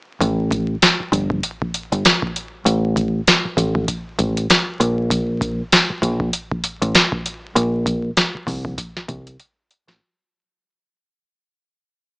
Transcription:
0.21 0.75 A1 loud
0.21 kick loud
0.21 closed hi-hat medium
0.51 kick loud
0.51 closed hi-hat medium
0.82 snare loud
0.82 closed hi-hat loud
1.00 muted fingered electric bass stroke soft
1.12 1.39 G1 medium
1.12 kick medium
1.12 closed hi-hat medium
1.30 kick medium
1.43 closed hi-hat loud
1.62 kick medium
1.74 closed hi-hat medium
1.92 2.03 G1 medium
1.92 closed hi-hat medium
2.05 snare loud
2.05 closed hi-hat medium
2.22 kick loud
2.36 closed hi-hat medium
2.66 3.20 A1 loud
2.66 closed hi-hat loud
2.96 kick loud
2.96 closed hi-hat medium
3.28 snare loud
3.28 closed hi-hat medium
3.45 muted fingered electric bass stroke soft
3.57 3.84 A1 medium
3.57 kick medium
3.57 closed hi-hat medium
3.75 kick medium
3.88 kick loud
3.88 closed hi-hat loud
4.19 4.46 A1 medium
4.19 kick loud
4.19 closed hi-hat medium
4.37 closed hi-hat medium
4.50 snare loud
4.50 closed hi-hat medium
4.80 5.61 A#1 loud
4.80 closed hi-hat medium
5.10 kick loud
5.10 closed hi-hat medium
5.41 kick loud
5.41 closed hi-hat medium
5.72 snare loud
5.72 closed hi-hat loud
5.90 muted fingered electric bass stroke soft
6.02 6.29 A#1 loud
6.02 kick medium
6.02 closed hi-hat medium
6.20 kick medium
6.33 closed hi-hat loud
6.52 kick medium
6.64 closed hi-hat medium
6.82 6.93 A1 loud
6.82 closed hi-hat medium
6.95 snare loud
6.95 closed hi-hat medium
7.12 kick loud
7.26 closed hi-hat medium
7.55 8.10 A#1 loud
7.55 closed hi-hat medium
7.86 kick loud
7.86 closed hi-hat medium
8.17 snare loud
8.17 closed hi-hat loud
8.35 muted fingered electric bass stroke soft
8.47 8.74 C2 medium
8.47 kick medium
8.47 open hi-hat medium
8.65 kick medium
8.78 kick loud
8.78 closed hi-hat loud
8.97 snare soft
9.08 9.35 C2 medium
9.08 kick loud
9.08 closed hi-hat medium
9.27 closed hi-hat medium
9.39 closed hi-hat medium
9.71 closed hi-hat medium
9.88 9.99 A1 medium
9.88 snare loud

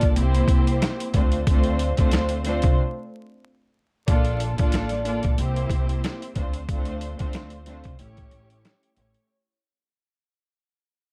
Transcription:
0.00 0.16 A#1 medium
0.00 0.13 A#3 loud
0.00 0.13 D4 medium
0.00 0.14 F4 medium
0.00 0.14 A4 medium
0.00 0.14 D5 loud
0.00 kick medium
0.00 closed hi-hat medium
0.15 0.46 C2 loud
0.15 1.06 A#3 loud
0.15 1.06 C4 medium
0.15 1.07 E4 loud
0.15 1.07 G4 medium
0.15 1.07 C5 loud
0.15 closed hi-hat loud
0.34 closed hi-hat medium
0.48 0.78 C2 medium
0.48 kick loud
0.48 closed hi-hat medium
0.67 closed hi-hat medium
0.82 snare loud
0.82 snare medium
0.82 closed hi-hat loud
1.00 closed hi-hat medium
1.13 1.93 D2 loud
1.13 1.44 A3 medium
1.13 1.44 C4 medium
1.13 1.45 D4 medium
1.13 1.45 F4 medium
1.13 1.45 C5 medium
1.13 kick medium
1.13 closed hi-hat medium
1.32 closed hi-hat medium
1.46 1.93 A3 loud
1.46 1.93 C4 medium
1.46 1.93 D4 medium
1.46 1.94 F4 medium
1.46 1.94 C5 loud
1.46 kick loud
1.46 closed hi-hat medium
1.64 closed hi-hat soft
1.79 closed hi-hat medium
1.96 2.59 D2 medium
1.96 2.41 A3 loud
1.96 2.41 C4 medium
1.96 2.41 D4 medium
1.96 2.42 F4 medium
1.96 2.42 C5 loud
1.96 kick loud
1.96 closed hi-hat medium
2.11 snare loud
2.11 snare medium
2.11 closed hi-hat loud
2.29 closed hi-hat medium
2.43 2.74 A3 medium
2.43 2.75 C4 medium
2.43 2.75 D4 medium
2.43 2.75 F4 medium
2.43 2.76 C5 loud
2.43 snare soft
2.43 closed hi-hat medium
2.62 2.77 C2 medium
2.62 kick loud
2.62 closed hi-hat medium
4.07 4.54 A#1 loud
4.07 4.53 A#3 medium
4.07 4.54 D4 medium
4.07 4.54 F4 medium
4.07 4.54 A4 medium
4.07 4.55 D5 loud
4.07 kick loud
4.07 closed hi-hat medium
4.25 closed hi-hat soft
4.40 closed hi-hat medium
4.57 5.20 A1 medium
4.57 5.01 A#3 medium
4.57 5.02 D4 medium
4.57 5.02 F4 medium
4.57 5.02 A4 medium
4.57 5.03 D5 loud
4.57 kick medium
4.57 closed hi-hat medium
4.72 snare loud
4.72 snare medium
4.72 closed hi-hat loud
4.89 snare soft
4.89 closed hi-hat medium
5.04 5.35 A#3 medium
5.04 5.35 D4 medium
5.04 5.36 F4 medium
5.04 5.36 A4 medium
5.04 5.36 D5 loud
5.04 closed hi-hat medium
5.23 5.38 A#1 medium
5.23 kick loud
5.23 closed hi-hat medium
5.37 5.68 C2 loud
5.37 6.28 A#3 loud
5.37 6.28 C4 medium
5.37 6.29 E4 medium
5.37 6.29 G4 medium
5.37 6.29 C5 loud
5.37 closed hi-hat loud
5.56 closed hi-hat medium
5.70 6.00 C2 medium
5.70 kick loud
5.70 closed hi-hat medium
5.89 closed hi-hat medium
6.04 snare loud
6.04 snare medium
6.04 closed hi-hat medium
6.22 closed hi-hat medium
6.35 7.15 D2 loud
6.35 6.66 A3 medium
6.35 6.66 C4 medium
6.35 6.66 D4 medium
6.35 6.67 F4 medium
6.35 6.67 C5 medium
6.35 kick medium
6.35 closed hi-hat medium
6.53 closed hi-hat medium
6.68 7.14 A3 medium
6.68 7.15 C4 medium
6.68 7.15 D4 medium
6.68 7.15 F4 medium
6.68 7.16 C5 loud
6.68 kick loud
6.68 closed hi-hat medium
6.85 closed hi-hat soft
7.01 closed hi-hat medium
7.18 7.81 D2 medium
7.18 7.62 A3 loud
7.18 7.62 C4 medium
7.18 7.63 D4 medium
7.18 7.63 F4 medium
7.18 7.63 C5 loud
7.18 kick medium
7.18 closed hi-hat medium
7.33 snare loud
7.33 snare medium
7.33 closed hi-hat medium
7.50 closed hi-hat medium
7.65 7.96 A3 loud
7.65 7.96 C4 medium
7.65 7.96 D4 medium
7.65 7.97 F4 medium
7.65 7.97 C5 loud
7.65 snare soft
7.65 closed hi-hat medium
7.84 7.98 C2 medium
7.84 kick medium
7.84 closed hi-hat medium
7.97 8.29 A1 loud
7.97 8.89 A3 medium
7.97 8.89 C#4 medium
7.97 8.89 E4 medium
7.97 8.90 G4 medium
7.97 8.90 C#5 loud
7.97 closed hi-hat loud
8.17 kick loud
8.17 closed hi-hat medium
8.31 8.62 A1 medium
8.31 closed hi-hat medium
8.50 closed hi-hat medium
8.65 snare loud
8.65 closed hi-hat medium
8.83 closed hi-hat medium
8.95 9.13 A1 medium
8.95 9.26 A3 medium
8.95 9.27 C#4 medium
8.95 9.27 E4 medium
8.95 9.27 G4 medium
8.95 9.28 C#5 medium
8.95 closed hi-hat medium
9.14 closed hi-hat medium

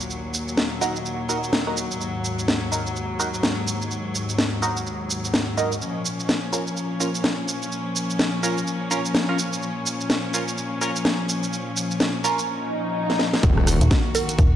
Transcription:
0.00 5.78 D#2 medium
0.00 1.97 A#2 medium
0.00 5.78 F#3 medium
0.00 shaker soft
0.10 shaker soft
0.34 shaker medium
0.48 shaker soft
0.57 snare loud
0.57 shaker soft
0.81 0.96 D#4 medium
0.81 0.96 F#4 medium
0.81 0.96 A#4 medium
0.81 shaker medium
0.96 shaker soft
1.06 shaker soft
1.29 1.38 D#4 medium
1.29 1.38 F#4 medium
1.29 1.38 A#4 medium
1.29 shaker medium
1.44 shaker soft
1.53 snare loud
1.53 shaker soft
1.67 1.77 D#4 medium
1.67 1.77 F#4 medium
1.67 1.77 A#4 medium
1.77 shaker medium
1.91 shaker soft
2.01 5.78 G#2 medium
2.01 shaker soft
2.25 shaker medium
2.39 shaker soft
2.48 snare loud
2.48 shaker soft
2.72 2.81 D#4 medium
2.72 2.81 F#4 medium
2.72 2.81 A#4 medium
2.72 shaker medium
2.87 shaker soft
2.96 shaker soft
3.19 3.29 D#4 medium
3.19 3.29 F#4 medium
3.19 3.29 A#4 medium
3.19 shaker medium
3.34 shaker soft
3.43 snare loud
3.43 shaker soft
3.68 shaker medium
3.82 shaker soft
3.91 shaker soft
4.15 shaker medium
4.29 shaker soft
4.38 snare loud
4.38 shaker soft
4.62 4.77 D#4 medium
4.62 4.77 F#4 medium
4.62 4.77 A#4 medium
4.62 shaker medium
4.77 shaker soft
4.87 shaker soft
5.10 shaker medium
5.25 shaker soft
5.34 snare loud
5.34 shaker soft
5.57 5.72 D#4 medium
5.57 5.72 F#4 medium
5.57 5.72 A#4 loud
5.57 shaker medium
5.72 shaker soft
5.81 13.39 A#2 medium
5.81 13.39 F3 medium
5.81 13.39 C#4 medium
5.81 shaker soft
6.05 shaker medium
6.20 shaker soft
6.29 snare loud
6.29 shaker soft
6.53 6.62 C#4 medium
6.53 6.62 F4 medium
6.53 6.62 A#4 medium
6.53 shaker medium
6.67 shaker soft
6.77 shaker soft
7.00 7.10 C#4 medium
7.00 7.10 F4 medium
7.00 7.10 A#4 medium
7.00 shaker medium
7.15 shaker soft
7.24 snare loud
7.24 shaker soft
7.48 shaker medium
7.63 shaker soft
7.72 shaker soft
7.96 shaker medium
8.10 shaker soft
8.19 snare loud
8.19 shaker soft
8.43 8.58 C#4 medium
8.43 8.58 F4 medium
8.43 8.58 A#4 loud
8.43 shaker medium
8.58 shaker soft
8.67 shaker soft
8.91 9.00 C#4 medium
8.91 9.00 F4 medium
8.91 9.00 A#4 medium
8.91 shaker medium
9.05 shaker soft
9.15 snare loud
9.15 shaker soft
9.29 9.39 C#4 medium
9.29 9.39 F4 medium
9.29 9.39 A#4 medium
9.39 shaker medium
9.53 shaker soft
9.63 shaker soft
9.86 shaker medium
10.01 shaker soft
10.10 snare loud
10.10 shaker soft
10.34 10.43 C#4 medium
10.34 10.43 F4 medium
10.34 10.43 A#4 medium
10.34 shaker medium
10.48 shaker soft
10.58 shaker soft
10.81 10.91 C#4 medium
10.81 10.91 F4 medium
10.81 10.91 A#4 medium
10.81 shaker medium
10.96 shaker soft
11.05 snare loud
11.05 shaker soft
11.29 shaker medium
11.43 shaker soft
11.53 shaker soft
11.77 shaker medium
11.91 shaker soft
12.00 snare loud
12.00 shaker soft
12.24 12.39 C#4 medium
12.24 12.39 F4 medium
12.24 12.39 A#4 medium
12.24 shaker medium
12.39 shaker soft
12.48 swell medium
13.10 snare soft
13.19 snare medium
13.34 snare medium
13.43 13.79 D#1 loud
13.43 14.56 D#3 medium
13.43 14.56 A#3 medium
13.43 14.56 F#4 medium
13.43 kick loud
13.43 closed hi-hat medium
13.43 impact medium
13.43 shaker soft
13.57 cross-stick medium
13.67 cross-stick medium
13.67 open hi-hat loud
13.67 shaker medium
13.81 13.89 D#1 medium
13.81 closed hi-hat medium
13.81 shaker soft
13.91 kick loud
13.91 snare loud
13.91 closed hi-hat medium
13.91 shaker soft
14.15 14.56 A#4 medium
14.15 open hi-hat loud
14.15 shaker medium
14.29 closed hi-hat medium
14.29 shaker soft
14.39 14.56 D#1 loud
14.39 kick loud
14.39 closed hi-hat medium
14.39 shaker soft

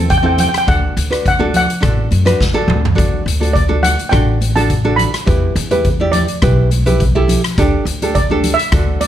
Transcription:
0.00 0.45 E2 loud
0.00 0.12 C4 medium
0.00 0.12 E4 medium
0.00 0.12 A4 medium
0.00 0.10 A5 loud
0.10 0.16 G5 loud
0.10 kick medium
0.10 closed hi-hat medium
0.18 0.25 G5 medium
0.23 0.50 C4 medium
0.23 0.50 E4 medium
0.23 0.50 A4 medium
0.23 0.31 G5 medium
0.32 0.39 G5 medium
0.38 0.47 G5 medium
0.38 closed hi-hat medium
0.38 low conga medium
0.49 0.56 G5 medium
0.54 0.64 G5 medium
0.54 cross-stick loud
0.54 closed hi-hat medium
0.67 0.91 D2 medium
0.67 0.93 D4 medium
0.67 0.93 F#4 medium
0.67 0.93 A4 medium
0.67 1.27 F#5 loud
0.67 kick loud
0.67 closed hi-hat medium
0.97 1.65 D2 loud
0.97 closed hi-hat medium
1.10 1.27 D4 medium
1.10 1.27 F#4 medium
1.10 1.27 B4 medium
1.10 cross-stick medium
1.10 closed hi-hat medium
1.26 1.40 F#5 medium
1.26 kick medium
1.26 closed hi-hat medium
1.39 1.65 D4 medium
1.39 1.66 F#4 medium
1.39 1.66 A4 medium
1.39 high conga medium
1.54 2.66 F#5 loud
1.54 closed hi-hat medium
1.54 low conga medium
1.70 closed hi-hat medium
1.80 2.06 A1 loud
1.80 2.08 D4 medium
1.80 2.08 F#4 medium
1.80 2.08 A4 medium
1.80 kick loud
1.80 cross-stick medium
1.80 closed hi-hat medium
2.11 2.37 F#2 medium
2.11 closed hi-hat medium
2.11 high conga medium
2.25 2.42 D4 medium
2.25 2.43 F#4 medium
2.25 2.43 B4 loud
2.25 cross-stick medium
2.25 closed hi-hat medium
2.25 low conga medium
2.40 2.66 E2 medium
2.40 kick loud
2.40 snare medium
2.54 2.80 D4 medium
2.54 2.80 F#4 medium
2.54 2.80 A4 loud
2.68 2.94 D2 loud
2.68 mid tom loud
2.68 high conga medium
2.68 low conga medium
2.85 floor tom loud
2.95 3.21 D2 medium
2.95 3.23 D4 medium
2.95 3.23 F#4 medium
2.95 3.23 A4 medium
2.95 kick loud
2.95 closed hi-hat medium
3.26 3.95 D2 loud
3.26 closed hi-hat medium
3.40 3.57 D4 medium
3.40 3.57 F#4 medium
3.40 3.58 A4 medium
3.40 closed hi-hat medium
3.40 high conga medium
3.53 3.81 D5 medium
3.53 kick medium
3.53 closed hi-hat medium
3.69 3.95 D4 medium
3.69 3.95 F#4 medium
3.69 3.95 A4 medium
3.69 high conga medium
3.83 3.96 F#5 loud
3.83 closed hi-hat loud
3.83 low conga medium
3.99 closed hi-hat medium
4.09 5.05 A1 loud
4.09 4.38 D4 medium
4.09 4.38 F#4 medium
4.09 4.38 A4 medium
4.09 4.57 G5 loud
4.09 kick loud
4.09 cross-stick medium
4.09 closed hi-hat medium
4.41 closed hi-hat loud
4.41 high conga medium
4.56 4.73 D4 medium
4.56 4.73 F#4 medium
4.56 4.73 A4 loud
4.56 5.00 A5 loud
4.56 closed hi-hat medium
4.56 low conga medium
4.70 kick medium
4.70 closed hi-hat medium
4.84 5.11 D4 medium
4.84 5.11 F#4 medium
4.84 5.11 A4 loud
4.96 6.08 B5 loud
4.96 closed hi-hat loud
4.96 low conga medium
5.14 cross-stick loud
5.14 closed hi-hat medium
5.26 5.51 E2 loud
5.26 5.53 E4 medium
5.26 5.53 G4 medium
5.26 5.53 B4 medium
5.26 kick loud
5.26 closed hi-hat medium
5.55 6.25 E2 loud
5.55 closed hi-hat loud
5.71 5.88 E4 medium
5.71 5.88 G4 medium
5.71 5.88 B4 loud
5.71 closed hi-hat medium
5.71 high conga medium
5.85 kick medium
5.85 closed hi-hat medium
6.00 6.26 E4 medium
6.00 6.26 G4 medium
6.00 6.26 D5 medium
6.00 high conga medium
6.12 7.24 D5 medium
6.12 closed hi-hat medium
6.12 low conga medium
6.28 closed hi-hat medium
6.42 7.34 B1 loud
6.42 6.68 E4 medium
6.42 6.69 G4 medium
6.42 6.69 B4 medium
6.42 kick loud
6.42 cross-stick medium
6.42 closed hi-hat medium
6.71 closed hi-hat medium
6.71 high conga medium
6.86 7.03 E4 medium
6.86 7.03 G4 medium
6.86 7.03 B4 loud
6.86 closed hi-hat medium
6.86 low conga medium
7.00 kick medium
7.00 closed hi-hat medium
7.15 7.41 E4 loud
7.15 7.41 G4 medium
7.15 7.41 A4 loud
7.28 closed hi-hat medium
7.28 low conga medium
7.44 cross-stick loud
7.44 closed hi-hat medium
7.58 7.81 D2 medium
7.58 7.84 D4 medium
7.58 7.84 G4 medium
7.58 7.84 A4 loud
7.58 kick loud
7.58 closed hi-hat medium
7.85 8.54 D2 medium
7.85 closed hi-hat loud
8.02 8.18 D4 medium
8.02 8.18 G4 medium
8.02 8.19 A4 medium
8.02 closed hi-hat medium
8.02 high conga medium
8.15 8.41 D5 medium
8.15 kick medium
8.15 closed hi-hat medium
8.30 8.56 D4 medium
8.30 8.56 G4 medium
8.30 8.56 A4 medium
8.30 high conga medium
8.44 closed hi-hat medium
8.44 low conga medium
8.54 9.03 E5 loud
8.59 closed hi-hat medium
8.72 9.07 D2 loud
8.72 8.98 D4 medium
8.72 8.98 F#4 medium
8.72 8.99 A4 medium
8.72 kick loud
8.72 cross-stick loud
8.72 closed hi-hat medium
9.01 9.06 D5 medium
9.01 closed hi-hat loud
9.01 high conga medium

